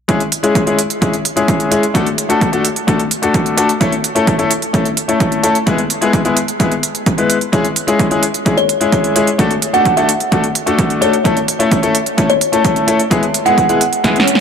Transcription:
0.08 grand piano G#3 C#4 E4 G#4, kick, closed hi-hat
0.20 closed hi-hat
0.32 closed hi-hat
0.43 grand piano G#3 C#4 E4 G#4, closed hi-hat
0.55 kick, closed hi-hat
0.66 grand piano G#3 C#4 E4 G#4, closed hi-hat
0.79 closed hi-hat
0.90 closed hi-hat
1.01 grand piano G#3 C#4 E4 G#4, kick, closed hi-hat
1.13 closed hi-hat
1.25 closed hi-hat
1.36 grand piano G#3 C#4 E4 G#4, closed hi-hat
1.48 kick, closed hi-hat
1.60 closed hi-hat
1.71 grand piano G#3 C#4 E4 G#4, closed hi-hat
1.83 closed hi-hat
1.94 grand piano A3 D4 F#4 A4, kick, closed hi-hat
2.06 closed hi-hat
2.18 closed hi-hat
2.29 grand piano A3 D4 F#4 A4, closed hi-hat
2.41 kick, closed hi-hat
2.52 grand piano A3 D4 F#4 A4, closed hi-hat
2.65 closed hi-hat
2.76 closed hi-hat
2.87 grand piano A3 D4 F#4 A4, kick, closed hi-hat
2.99 closed hi-hat
3.11 closed hi-hat
3.22 grand piano A3 D4 F#4 A4, closed hi-hat
3.34 kick, closed hi-hat
3.46 closed hi-hat
3.57 grand piano A3 D4 F#4 A4, closed hi-hat
3.69 closed hi-hat
3.80 grand piano A3 C#4 E4 A4, kick, closed hi-hat
3.92 closed hi-hat
4.04 closed hi-hat
4.15 grand piano A3 C#4 E4 A4, closed hi-hat
4.27 kick, closed hi-hat
4.38 grand piano A3 C#4 E4 A4, closed hi-hat
4.51 closed hi-hat
4.62 closed hi-hat
4.73 grand piano A3 C#4 E4 A4, kick, closed hi-hat
4.85 closed hi-hat
4.97 closed hi-hat
5.08 grand piano A3 C#4 E4 A4, closed hi-hat
5.20 kick, closed hi-hat
5.32 closed hi-hat
5.43 grand piano A3 C#4 E4 A4, closed hi-hat
5.55 closed hi-hat
5.66 grand piano G#3 B3 E4 G#4, kick, closed hi-hat
5.78 closed hi-hat
5.90 closed hi-hat
6.01 grand piano G#3 B3 E4 G#4, closed hi-hat
6.13 kick, closed hi-hat
6.25 grand piano G#3 B3 E4 G#4, closed hi-hat
6.37 closed hi-hat
6.48 closed hi-hat
6.59 grand piano G#3 B3 E4 G#4, kick, closed hi-hat
6.72 closed hi-hat
6.83 closed hi-hat
6.95 closed hi-hat
7.06 kick, closed hi-hat
7.17 grand piano G#3 B3 E4 B4, closed hi-hat
7.30 closed hi-hat
7.41 closed hi-hat
7.52 grand piano G#3 C#4 E4 G#4, kick, closed hi-hat
7.65 closed hi-hat
7.76 closed hi-hat
7.87 grand piano G#3 C#4 E4 G#4, closed hi-hat
7.99 kick, closed hi-hat
8.10 grand piano G#3 C#4 E4 G#4, closed hi-hat
8.23 closed hi-hat
8.34 closed hi-hat
8.45 grand piano G#3 C#4 E4 G#4, kick, closed hi-hat
8.57 kalimba C#5, closed hi-hat
8.69 closed hi-hat
8.80 grand piano G#3 C#4 E4 G#4, closed hi-hat
8.92 kick, closed hi-hat
9.04 closed hi-hat
9.15 grand piano G#3 C#4 E4 G#4, closed hi-hat
9.27 closed hi-hat
9.38 grand piano A3 D4 F#4 A4, kick, closed hi-hat
9.51 closed hi-hat
9.62 closed hi-hat
9.73 grand piano A3 D4 F#4 A4, kalimba F#5, closed hi-hat
9.85 kick, closed hi-hat
9.97 grand piano A3 D4 F#4 A4, kalimba E5, closed hi-hat
10.09 closed hi-hat
10.20 closed hi-hat
10.32 grand piano A3 D4 F#4 A4, kick, closed hi-hat
10.44 closed hi-hat
10.55 closed hi-hat
10.66 grand piano A3 D4 F#4 A4, closed hi-hat
10.79 kick, closed hi-hat
10.90 closed hi-hat
11.01 grand piano A3 D4 F#4 A4, kalimba C#5, closed hi-hat
11.13 closed hi-hat
11.24 grand piano A3 C#4 E4 A4, kick, closed hi-hat
11.37 closed hi-hat
11.48 closed hi-hat
11.59 grand piano A3 C#4 E4 A4, closed hi-hat
11.71 kick, closed hi-hat
11.83 grand piano A3 C#4 E4 A4, closed hi-hat
11.95 closed hi-hat
12.06 closed hi-hat
12.17 grand piano A3 C#4 E4 A4, kick, closed hi-hat
12.30 kalimba C#5, closed hi-hat
12.41 closed hi-hat
12.52 grand piano A3 C#4 E4 A4, closed hi-hat
12.65 kick, closed hi-hat
12.76 closed hi-hat
12.87 grand piano A3 C#4 E4 A4, closed hi-hat
12.99 closed hi-hat
13.11 grand piano G#3 B3 E4 G#4, kick, closed hi-hat
13.23 closed hi-hat
13.34 closed hi-hat
13.45 grand piano G#3 B3 E4 G#4, kalimba F#5, closed hi-hat
13.58 kick, closed hi-hat
13.69 grand piano G#3 B3 E4 G#4, closed hi-hat
13.81 closed hi-hat
13.93 closed hi-hat
14.04 grand piano G#3 B3 E4 G#4, kick, snare, closed hi-hat, swell
14.16 snare, closed hi-hat
14.27 closed hi-hat
14.35 snare

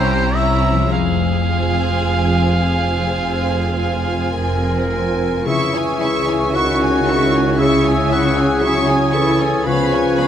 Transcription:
Already playing: double bass section C2, cello section C2, harp C3 A#3 E4 C5 C#5, viola section C#4 E4, violin section G4 A#5, oboe C5
0.35 viola section C#4 E4, violin section E4 A#5, oboe E5
0.72 harp F3
0.77 harp G#3
0.81 harp F4
0.86 harp C5
0.91 double bass section F1, cello section F2, violin section G#4, oboe F5
1.46 viola section C4 F4, violin section G#5
2.04 double bass section F1, cello section F2
2.60 viola section C4 F4, violin section G#5
3.17 double bass section F1, cello section F2
3.75 viola section C4 F4, violin section G#5
4.31 double bass section F1, cello section F2, clarinet A#4
4.90 viola section C4 F4, violin section G#5
5.44 double bass section C#2, harp C#3, cello section C#3, bassoon E3, french horn section C#4 E4, viola section E4, clarinet G#4, violin section E5 C#6, oboe E5, flute section C#6
5.73 harp C#4, viola section C#4, violin section C#5 G#5
5.99 harp G#3, viola section E4, violin section E5 C#6
6.26 viola section C#4, harp E4, violin section C#5 G#5
6.52 clarinet F#4, harp C#5, violin section E5 C#6, oboe F#5
6.56 bassoon D#3, viola section E4
6.81 viola section C#4, harp G#4, violin section C#5 G#5
7.05 viola section E4, harp C#5, violin section E5 C#6
7.32 viola section C#4, violin section C#5 G#5
7.58 harp C#3, bassoon C#3, viola section E4, clarinet G#4, violin section E5 C#6, oboe E5, flute section E6
7.81 harp C#4, violin section C#5
7.86 viola section C#4, violin section G#5
8.08 harp G#3, viola section E4, violin section E5
8.12 oboe F#5, violin section C#6
8.34 viola section C#4, harp E4, violin section C#5 G#5
8.62 bassoon F#3, viola section E4, harp C#5, violin section E5 C#6, oboe G#5, flute section D#6
8.87 viola section C#4, harp G#4, violin section C#5 G#5
9.12 bassoon E3, viola section E4, clarinet A4, harp C#5, violin section E5 C#6
9.39 viola section C#4, harp E4, violin section C#5 G#5
9.65 double bass section C#2, cello section C#3, harp C#3, bassoon F3, viola section B3, french horn section C#4 F4, clarinet B4, violin section F5 B5, flute section C#6
9.92 viola section C#4, harp C#4, violin section C#5 G#5
10.18 harp G#3, viola section B3, violin section F5 B5

